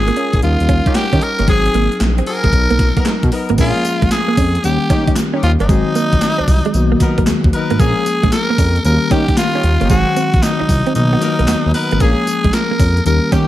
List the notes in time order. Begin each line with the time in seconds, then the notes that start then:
Already playing: G#1 G#3 C#4 F4 G#4 A#4
0.08 A#3, closed hi-hat
0.16 A#3 C#4 G#4, closed hi-hat
0.33 A#1, kick, closed hi-hat
0.42 D#2 G3 C#4 D#4 F4 A#4, muted clean electric guitar stroke, closed hi-hat
0.60 D#2, closed hi-hat
0.69 C#4, kick, closed hi-hat
0.86 C#4 D#4 G4, kick, closed hi-hat
0.95 G4, snare, clap, closed hi-hat
1.12 D#3 C#4 D#4 G4, kick, closed hi-hat
1.22 A#4, muted clean electric guitar stroke, closed hi-hat
1.38 G1 A#3 C#4 D#4 G4, closed hi-hat
1.47 G#1 F#3 G#3 C4 D#4 F#4 G#4, kick, closed hi-hat
1.66 muted clean electric guitar stroke, closed hi-hat
1.74 G#1 A#3, closed hi-hat
1.92 closed hi-hat
2.00 A#1, snare, clap, closed hi-hat
2.18 C4, closed hi-hat
2.26 C4 F#4 G#4 A#4, muted clean electric guitar stroke, open hi-hat
2.44 G#1 G#3, kick, closed hi-hat
2.53 B1 F#3 B3 D#4 A#4, kick, closed hi-hat
2.70 B1 A#3, closed hi-hat
2.79 muted clean electric guitar stroke, kick, snare, closed hi-hat
2.97 A#3 B3 D#4 A#4, kick, closed hi-hat
3.05 G#3, snare, clap, closed hi-hat
3.23 B2, kick, closed hi-hat
3.32 B3 D#4 A#4, muted clean electric guitar stroke, open hi-hat
3.49 G#1 A#3, closed hi-hat
3.58 A#1 F3 G#3 A#3 C#4 F4 G#4, kick, closed hi-hat, crash, tambourine
3.85 muted clean electric guitar stroke, closed hi-hat, tambourine
4.02 A#1 G#3, kick, closed hi-hat
4.11 G#4, muted clean electric guitar stroke, snare, clap, closed hi-hat, tambourine
4.28 A#3
4.37 F2 C#4, kick, open hi-hat, tambourine
4.55 closed hi-hat
4.64 D#2 D#3 G3 A#3 C#4 G4, muted clean electric guitar stroke, closed hi-hat, tambourine
4.90 D#3 C#4 D#4 G4, kick, snare, closed hi-hat, tambourine
5.08 D#4, kick, closed hi-hat
5.16 snare, clap, closed hi-hat, tambourine
5.34 C#4 D#4 G4
5.42 D#2 F4, muted clean electric guitar stroke, closed hi-hat
5.60 G1 A#3 C#4 D#4 G4, closed hi-hat
5.68 G#1 D#3 F#3 G#3 C4 F#4 G#4, kick, closed hi-hat, tambourine
5.86 muted clean electric guitar stroke
5.95 A#3, closed hi-hat, tambourine
6.12 A#1, kick, closed hi-hat
6.21 snare, clap, closed hi-hat, tambourine
6.38 C2 C4
6.48 C2, muted clean electric guitar stroke, kick, open hi-hat, tambourine
6.65 G#3, closed hi-hat
6.74 B1 D#3 F#3 A#3 B3 F#4, closed hi-hat, tambourine
6.92 A#3
7.00 B3 D#4 A#4, muted clean electric guitar stroke, kick, snare, closed hi-hat, tambourine
7.18 B1 A#3, kick, closed hi-hat
7.27 D#2 G#3, snare, clap, closed hi-hat, tambourine
7.44 D#2, kick
7.53 B3 D#4 A#4 B4, muted clean electric guitar stroke, closed hi-hat
7.70 G#1 A#3, closed hi-hat
7.79 A#1 F3 G#3 A#3 C#4 G#4, kick, closed hi-hat, tambourine
8.06 muted clean electric guitar stroke, closed hi-hat, tambourine
8.23 A#1 G#3, kick, closed hi-hat
8.32 A#4, muted clean electric guitar stroke, snare, clap, closed hi-hat, tambourine
8.50 A#3
8.58 F2 C#4, kick, open hi-hat, tambourine
8.76 closed hi-hat
8.84 D#2 D#3 G3 A#3 C#4 F#4 A#4, muted clean electric guitar stroke, closed hi-hat, tambourine
8.93 G4
9.11 D#3 C#4 D#4 G4, kick, snare, closed hi-hat, tambourine
9.28 D#4, kick, closed hi-hat
9.37 F4, snare, clap, closed hi-hat, tambourine
9.54 C#4 D#4 G4
9.63 D#2, muted clean electric guitar stroke, closed hi-hat
9.81 G1 A#3 C#4 D#4 G4, closed hi-hat
9.89 G#1 D#3 F#3 G#3 C4 F#4 G#4, kick, closed hi-hat, tambourine
10.08 muted clean electric guitar stroke
10.16 C4, closed hi-hat, tambourine
10.33 A#1, kick, closed hi-hat
10.43 D#4, snare, clap, closed hi-hat, tambourine
10.60 C2 D#4
10.69 C2, muted clean electric guitar stroke, kick, open hi-hat, tambourine
10.86 C4, closed hi-hat
10.94 B1 C#3 F#3 A#3 B3 D#4 F#4, closed hi-hat, tambourine
11.01 D#3
11.13 B3
11.21 B3 D#4 A#4, muted clean electric guitar stroke, snare, closed hi-hat, tambourine
11.39 B1 A#3, closed hi-hat
11.48 D#2 B3, snare, clap, closed hi-hat, tambourine
11.66 D#2
11.74 B3 D#4 A#4 B4, muted clean electric guitar stroke, open hi-hat
11.91 G#1 A#3, closed hi-hat
12.00 A#1 F3 G#3 A#3 C#4 G#4, kick, closed hi-hat, tambourine
12.27 muted clean electric guitar stroke, closed hi-hat, tambourine
12.44 A#1 G#3, kick, closed hi-hat
12.53 A#4, muted clean electric guitar stroke, snare, clap, closed hi-hat, tambourine
12.71 A#3
12.79 F2 C#4, kick, open hi-hat, tambourine
12.97 closed hi-hat
13.05 D#2 D#3 G3 A#3 C#4 G4 A#4, muted clean electric guitar stroke, closed hi-hat, tambourine
13.32 D#3 C#4 D#4 G4, kick, snare, closed hi-hat, tambourine